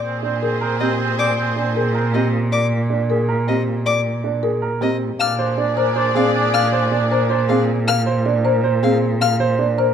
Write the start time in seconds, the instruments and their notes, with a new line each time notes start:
Already playing: cello A#2, string section G#4 C5
0.04 oboe C4
0.23 oboe C4, grand piano D4
0.42 oboe C4, grand piano G#4, marimba A#4
0.61 oboe C4, grand piano A#4
0.80 grand piano C4, oboe C4, marimba G4, violin D#5
0.99 oboe C4
1.19 oboe C4, marimba D5, violin D6
1.38 oboe C4
1.56 oboe C4, grand piano D4
1.75 oboe C4, grand piano G#4, marimba A#4
1.94 oboe C4, grand piano A#4
2.14 grand piano C4, oboe C4, marimba G4, violin D#5
2.52 marimba D5, violin D6
2.90 grand piano D4
3.09 grand piano G#4, marimba A#4
3.29 grand piano A#4
3.47 grand piano C4, marimba G4, violin D#5
3.86 marimba D5, violin D6
4.24 grand piano D4
4.43 grand piano G#4, marimba A#4
4.62 grand piano A#4
4.81 grand piano C4, marimba G4, violin D#5
5.19 cello A#2, oboe D4, string section G#4 D5, marimba F5, violin F6
5.39 oboe D4, grand piano C5
5.58 grand piano D4, oboe D4
5.77 oboe D4, grand piano A#4, marimba C5
5.96 oboe D4, grand piano C5
6.15 grand piano C4, oboe D4, marimba G#4, violin F5
6.35 oboe D4
6.54 oboe D4, marimba F5, violin F6
6.72 oboe D4, grand piano C5
6.92 grand piano D4, oboe D4
7.10 oboe D4, grand piano A#4, marimba C5
7.30 oboe D4, grand piano C5
7.49 grand piano C4, oboe D4, marimba G#4, violin F5
7.88 marimba F5, violin F6
8.06 grand piano C5
8.26 grand piano D4
8.45 grand piano A#4, marimba C5
8.64 grand piano C5
8.83 grand piano C4, marimba G#4, violin F5
9.21 marimba F5, violin F6
9.40 grand piano C5
9.59 grand piano D4
9.78 grand piano A#4, marimba C5